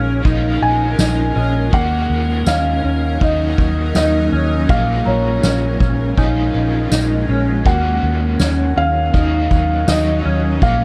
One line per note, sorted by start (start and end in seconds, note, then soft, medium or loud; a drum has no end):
0.00 0.21 A#1 loud
0.00 0.26 G#3 soft
0.00 1.70 G#3 medium
0.00 0.24 C#4 medium
0.00 0.28 C#4 soft
0.00 1.70 C#4 medium
0.00 0.24 F4 medium
0.00 1.70 F4 medium
0.00 10.84 A#4 medium
0.00 0.22 F5 medium
0.00 2.06 F6 medium
0.23 0.58 A#1 loud
0.23 1.72 A#2 medium
0.23 1.70 F3 medium
0.23 0.98 D#4 medium
0.23 kick loud
0.23 ride soft
0.27 1.74 G#3 medium
0.27 1.76 C#4 medium
0.27 1.76 F4 medium
0.62 0.95 A#1 medium
0.62 1.77 G#5 medium
0.62 ride soft
0.99 1.32 A#1 loud
0.99 1.35 D#4 medium
0.99 snare loud
0.99 tambourine medium
1.36 1.69 A#1 loud
1.36 1.73 C#4 medium
1.36 2.06 D#5 medium
1.36 ride soft
1.71 2.06 D#2 loud
1.71 3.18 D#3 medium
1.71 4.67 F#3 medium
1.71 2.47 A#3 medium
1.71 3.22 A#3 medium
1.71 4.67 C#4 medium
1.71 4.67 D#4 medium
1.71 2.50 F#5 loud
1.71 kick loud
1.76 3.24 C#4 medium
1.76 3.24 F#4 medium
2.10 2.42 D#2 loud
2.10 ride soft
2.46 2.79 D#2 loud
2.46 2.83 C#4 medium
2.46 5.03 D#5 medium
2.46 3.24 F5 loud
2.46 snare loud
2.46 tambourine medium
2.84 3.17 D#2 medium
2.84 3.21 C#4 medium
2.84 ride soft
3.19 3.54 D#2 loud
3.19 4.68 D#3 medium
3.19 4.71 A#3 medium
3.19 3.94 D#4 medium
3.19 3.94 D#5 medium
3.19 kick loud
3.19 ride medium
3.25 4.73 C#4 medium
3.25 4.72 F#4 medium
3.58 3.91 D#2 loud
3.58 kick loud
3.95 4.28 D#2 loud
3.95 4.32 D#4 medium
3.95 4.72 D#5 medium
3.95 snare loud
3.95 ride medium
3.95 tambourine medium
4.32 4.65 D#2 loud
4.32 4.69 C#4 medium
4.32 ride soft
4.67 5.02 A#1 loud
4.67 6.14 A#2 medium
4.67 6.16 F3 medium
4.67 7.63 G#3 medium
4.67 5.44 A#3 medium
4.67 7.63 C#4 medium
4.67 7.63 F4 medium
4.67 5.08 F5 medium
4.67 kick loud
4.67 ride medium
4.72 6.18 G#3 medium
4.72 6.20 C#4 medium
4.72 6.20 F4 medium
5.06 5.39 A#1 medium
5.06 6.51 C#5 medium
5.06 7.64 A#5 medium
5.43 5.76 A#1 loud
5.43 5.79 C#4 medium
5.43 snare loud
5.43 tambourine medium
5.80 6.13 A#1 loud
5.80 6.17 C#4 medium
5.80 kick medium
5.80 ride soft
6.15 6.50 A#1 loud
6.15 7.64 A#2 medium
6.15 7.63 F3 medium
6.15 6.90 D#4 medium
6.15 7.99 G#5 medium
6.15 kick medium
6.15 ride medium
6.19 7.66 G#3 medium
6.19 7.69 C#4 medium
6.19 7.68 F4 medium
6.54 6.87 A#1 medium
6.54 ride soft
6.91 7.24 A#1 medium
6.91 7.28 D#4 medium
6.91 snare medium
6.91 ride soft
6.91 tambourine medium
7.28 7.61 A#1 loud
7.28 7.66 C#4 medium
7.28 ride soft
7.64 7.98 D#2 loud
7.64 9.12 D#3 medium
7.64 10.59 F#3 medium
7.64 8.40 A#3 medium
7.64 9.14 A#3 medium
7.64 10.84 C#4 medium
7.64 10.59 D#4 medium
7.64 10.23 F#4 medium
7.64 8.81 F#5 medium
7.64 kick loud
7.64 ride soft
7.69 9.15 C#4 medium
7.69 9.16 F#4 medium
8.03 8.35 D#2 loud
8.03 ride soft
8.40 8.72 D#2 loud
8.40 8.75 C#4 medium
8.40 snare loud
8.40 ride medium
8.40 tambourine medium
8.76 9.09 D#2 loud
8.76 9.13 C#4 medium
8.76 9.92 F5 loud
8.76 ride soft
9.14 9.47 D#2 loud
9.14 9.86 D#3 medium
9.14 9.88 A#3 medium
9.14 9.90 C#4 medium
9.14 9.86 D#4 medium
9.14 9.89 F#4 medium
9.14 kick medium
9.14 ride medium
9.51 9.84 D#2 medium
9.51 kick medium
9.87 10.21 D#2 loud
9.87 10.62 D#3 medium
9.87 10.64 A#3 medium
9.87 10.65 C#4 medium
9.87 10.25 D#4 medium
9.87 10.65 D#5 medium
9.87 snare loud
9.87 tambourine medium
9.92 10.64 F#4 medium
10.25 10.58 D#2 medium
10.25 10.62 C#4 medium
10.25 ride soft
10.60 10.84 A#1 medium
10.60 10.84 A#2 medium
10.60 10.84 F3 medium
10.60 10.84 G#3 medium
10.60 10.84 A#3 medium
10.60 10.84 F4 medium
10.60 10.84 F5 medium
10.60 kick loud
10.60 ride medium
10.64 10.84 G#3 medium
10.64 10.84 C#4 medium
10.64 10.84 F4 medium